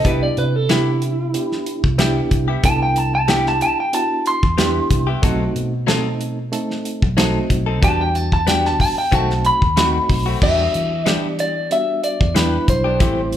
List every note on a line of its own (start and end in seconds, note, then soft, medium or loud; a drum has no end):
0.04 0.29 C2 medium
0.04 0.25 G3 medium
0.04 0.54 B3 medium
0.04 0.25 B3 medium
0.04 0.54 D4 medium
0.04 0.54 E4 medium
0.04 0.25 E4 medium
0.04 0.55 G4 medium
0.04 0.26 G4 medium
0.04 0.22 B4 medium
0.04 kick loud
0.04 closed hi-hat medium
0.23 0.37 D5 medium
0.37 1.35 C3 medium
0.37 0.56 B4 medium
0.37 closed hi-hat soft
0.56 0.70 A4 medium
0.69 0.90 G3 medium
0.69 1.19 B3 medium
0.69 0.90 B3 medium
0.69 1.19 D4 medium
0.69 1.19 E4 medium
0.69 1.96 E4 medium
0.69 0.90 E4 medium
0.69 1.19 G4 medium
0.69 0.90 G4 medium
0.69 snare loud
0.69 closed hi-hat medium
1.02 closed hi-hat medium
1.33 1.83 B3 medium
1.33 1.83 D4 medium
1.33 1.84 E4 medium
1.33 1.84 G4 medium
1.33 closed hi-hat medium
1.52 snare soft
1.66 closed hi-hat medium
1.84 2.20 C2 medium
1.84 kick medium
1.99 2.19 G3 medium
1.99 2.48 B3 medium
1.99 2.19 B3 medium
1.99 2.49 D4 medium
1.99 2.49 E4 medium
1.99 2.20 E4 medium
1.99 2.49 G4 loud
1.99 2.20 G4 medium
1.99 snare loud
1.99 closed hi-hat medium
2.31 2.56 C2 medium
2.31 kick medium
2.31 closed hi-hat medium
2.48 2.68 B3 soft
2.48 2.67 E4 soft
2.48 2.67 G4 medium
2.63 3.61 C2 medium
2.63 3.13 B3 medium
2.63 3.14 D4 medium
2.63 3.14 E4 medium
2.63 3.14 A4 medium
2.63 2.81 A5 medium
2.63 kick loud
2.63 closed hi-hat medium
2.83 2.98 G5 medium
2.96 3.14 A5 medium
2.96 closed hi-hat medium
3.15 3.29 A5 medium
3.28 3.49 G3 medium
3.28 3.78 B3 medium
3.28 3.49 B3 medium
3.28 3.78 D4 medium
3.28 3.49 E4 medium
3.28 3.78 E4 medium
3.28 3.79 G4 medium
3.28 3.49 G4 medium
3.28 3.46 G5 medium
3.28 snare medium
3.28 closed hi-hat medium
3.46 3.61 A5 medium
3.46 snare soft
3.61 3.78 A5 loud
3.61 closed hi-hat medium
3.80 3.94 G5 medium
3.93 4.43 B3 medium
3.93 4.43 D4 medium
3.93 4.43 E4 medium
3.93 4.43 F#4 medium
3.93 4.25 A5 medium
3.93 closed hi-hat medium
4.26 6.17 C6 medium
4.26 closed hi-hat medium
4.43 4.79 E2 medium
4.43 kick medium
4.58 4.78 G3 medium
4.58 5.08 B3 medium
4.58 4.79 B3 medium
4.58 5.08 D4 medium
4.58 5.08 E4 medium
4.58 4.79 E4 medium
4.58 5.08 G4 loud
4.58 4.79 G4 medium
4.58 snare loud
4.58 closed hi-hat medium
4.90 5.15 C2 medium
4.90 kick medium
4.90 closed hi-hat medium
5.07 5.23 B3 soft
5.07 5.23 E4 medium
5.07 5.23 G4 medium
5.22 5.48 B1 medium
5.22 5.43 F#3 medium
5.22 5.72 A3 medium
5.22 5.73 C4 medium
5.22 5.43 C4 medium
5.22 5.73 D#4 medium
5.22 5.44 D#4 medium
5.22 5.73 F#4 loud
5.22 5.44 A4 medium
5.22 kick loud
5.22 closed hi-hat medium
5.55 6.53 B2 medium
5.55 closed hi-hat medium
5.87 6.08 F#3 medium
5.87 6.37 A3 medium
5.87 6.08 C4 medium
5.87 6.38 C4 medium
5.87 6.38 D#4 medium
5.87 6.08 D#4 medium
5.87 6.38 A4 medium
5.87 6.09 A4 medium
5.87 snare loud
5.87 closed hi-hat medium
6.21 closed hi-hat medium
6.52 7.02 A3 medium
6.52 7.02 C4 medium
6.52 7.02 D#4 medium
6.52 7.03 A4 medium
6.52 closed hi-hat medium
6.71 snare soft
6.85 closed hi-hat medium
7.02 7.38 B1 medium
7.02 kick medium
7.17 7.38 F#3 medium
7.17 7.67 A3 loud
7.17 7.67 C4 medium
7.17 7.38 C4 medium
7.17 7.67 D#4 medium
7.17 7.38 D#4 medium
7.17 7.68 F#4 medium
7.17 7.39 A4 medium
7.17 snare loud
7.17 closed hi-hat medium
7.50 7.83 B1 medium
7.50 kick medium
7.50 closed hi-hat medium
7.66 7.81 C4 soft
7.66 7.82 D#4 soft
7.66 7.82 A4 medium
7.82 8.80 E2 medium
7.82 8.32 G3 medium
7.82 8.02 B3 medium
7.82 8.32 B3 medium
7.82 8.32 D4 medium
7.82 8.03 D4 medium
7.82 8.32 F#4 medium
7.82 8.03 G4 medium
7.82 8.00 A5 loud
7.82 kick loud
7.82 closed hi-hat medium
8.01 8.16 G5 medium
8.15 8.32 A5 medium
8.15 closed hi-hat soft
8.32 8.48 A5 medium
8.32 kick medium
8.47 8.97 G3 medium
8.47 8.67 B3 medium
8.47 8.97 B3 medium
8.47 8.68 D4 medium
8.47 8.97 D4 medium
8.47 8.97 F#4 medium
8.47 8.68 G4 medium
8.47 8.65 G5 medium
8.47 snare medium
8.47 closed hi-hat medium
8.65 8.80 A5 medium
8.65 snare soft
8.80 8.97 A5 medium
8.80 kick medium
8.80 open hi-hat medium
8.98 9.15 G5 medium
9.12 9.50 B1 medium
9.12 9.32 D#3 medium
9.12 9.62 A3 medium
9.12 9.33 A3 medium
9.12 9.62 C4 medium
9.12 9.33 C4 medium
9.12 9.62 D#4 medium
9.12 9.62 F#4 medium
9.12 9.33 F#4 medium
9.12 9.45 A5 medium
9.12 kick medium
9.12 closed hi-hat medium
9.30 snare soft
9.45 10.40 B5 medium
9.45 closed hi-hat medium
9.62 9.98 D#2 medium
9.62 kick medium
9.76 9.97 D#3 medium
9.76 10.26 A3 medium
9.76 9.97 A3 medium
9.76 10.26 C4 medium
9.76 9.98 C4 medium
9.76 10.27 D#4 medium
9.76 10.27 F#4 medium
9.76 9.98 F#4 medium
9.76 snare loud
9.76 closed hi-hat medium
10.10 10.34 B1 medium
10.10 kick medium
10.10 open hi-hat medium
10.26 10.41 A3 soft
10.26 10.42 C4 soft
10.26 10.41 F#4 soft
10.41 10.66 E2 medium
10.41 10.62 E3 medium
10.41 10.91 G3 medium
10.41 10.91 B3 medium
10.41 10.62 B3 medium
10.41 10.91 D4 medium
10.41 10.62 D4 medium
10.41 10.92 F#4 medium
10.41 10.63 G4 medium
10.41 11.09 E5 medium
10.41 kick loud
10.41 crash loud
10.74 11.72 E3 medium
10.74 closed hi-hat medium
11.06 11.26 E3 medium
11.06 11.56 G3 medium
11.06 11.56 B3 medium
11.06 11.27 B3 medium
11.06 11.56 D4 medium
11.06 11.27 D4 medium
11.06 11.56 G4 medium
11.06 11.27 G4 medium
11.06 11.37 D5 medium
11.06 snare loud
11.06 closed hi-hat medium
11.39 11.71 D5 medium
11.39 closed hi-hat medium
11.71 12.20 G3 medium
11.71 12.20 B3 medium
11.71 12.21 D4 medium
11.71 12.21 F#4 medium
11.71 12.03 E5 medium
11.71 closed hi-hat medium
12.04 12.35 D5 medium
12.04 closed hi-hat medium
12.21 12.56 E2 medium
12.21 kick medium
12.35 12.55 E3 medium
12.35 12.85 G3 medium
12.35 12.56 B3 medium
12.35 12.85 B3 medium
12.35 12.56 D4 medium
12.35 12.85 D4 medium
12.35 12.85 E4 medium
12.35 12.56 G4 medium
12.35 12.67 B4 medium
12.35 snare loud
12.35 closed hi-hat medium
12.68 13.00 B1 medium
12.68 13.37 C5 medium
12.68 kick medium
12.68 closed hi-hat medium
12.84 13.00 B3 soft
12.84 13.00 D4 soft
12.84 13.00 G4 soft
12.99 13.37 A1 medium
12.99 13.20 E3 medium
12.99 13.37 G3 medium
12.99 13.20 A3 medium
12.99 13.37 A3 medium
12.99 13.21 C4 medium
12.99 13.37 C4 medium
12.99 13.37 E4 medium
12.99 13.21 G4 medium
12.99 kick loud
12.99 closed hi-hat medium
13.32 closed hi-hat medium